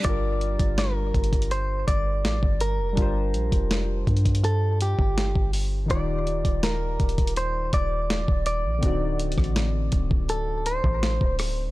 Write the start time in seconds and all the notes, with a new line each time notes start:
0.00 G3 D4
0.04 G1 F4 G4 D5, kick, closed hi-hat
0.09 A#4
0.41 closed hi-hat
0.59 G1, kick, closed hi-hat
0.78 A#4, snare, closed hi-hat
1.14 G1, kick, closed hi-hat
1.24 closed hi-hat
1.33 kick, closed hi-hat
1.42 closed hi-hat
1.51 C5, closed hi-hat
1.88 G1 D5, kick, closed hi-hat
2.24 A1, snare, closed hi-hat
2.43 G1, kick
2.61 A#4, closed hi-hat
2.79 F1
2.93 G3 D4
2.97 G1 F4 G4, kick, closed hi-hat
3.02 C5
3.34 A#1, closed hi-hat
3.52 F1, kick, closed hi-hat
3.71 snare, closed hi-hat
4.07 G2, kick, closed hi-hat
4.17 closed hi-hat
4.25 kick, closed hi-hat
4.35 closed hi-hat
4.44 A4, closed hi-hat
4.81 G4, closed hi-hat
4.99 G1, kick
5.18 snare, closed hi-hat
5.36 G1, kick
5.53 open hi-hat
5.86 D#3 D#4
5.90 D#1 F4 G4 D5, kick, closed hi-hat
5.95 D5
6.27 closed hi-hat
6.45 D#1, kick, closed hi-hat
6.63 A#4, snare, closed hi-hat
7.00 D#1, kick, closed hi-hat
7.09 closed hi-hat
7.18 kick, closed hi-hat
7.27 closed hi-hat
7.36 C5, closed hi-hat
7.73 D#1 D5, kick, closed hi-hat
8.10 snare, closed hi-hat
8.28 D#1, kick
8.46 D5, closed hi-hat
8.65 A#1
8.79 D3 C4
8.83 D1 D#4 F#4, kick, closed hi-hat
8.88 D5
9.19 closed hi-hat
9.32 closed hi-hat
9.38 A1, kick, cross-stick
9.44 closed hi-hat
9.56 snare, closed hi-hat
9.92 D1, kick, closed hi-hat
10.11 kick
10.29 A4, closed hi-hat
10.66 C5, closed hi-hat
10.84 A1, kick
11.03 snare, closed hi-hat
11.21 D1, kick
11.39 cross-stick, open hi-hat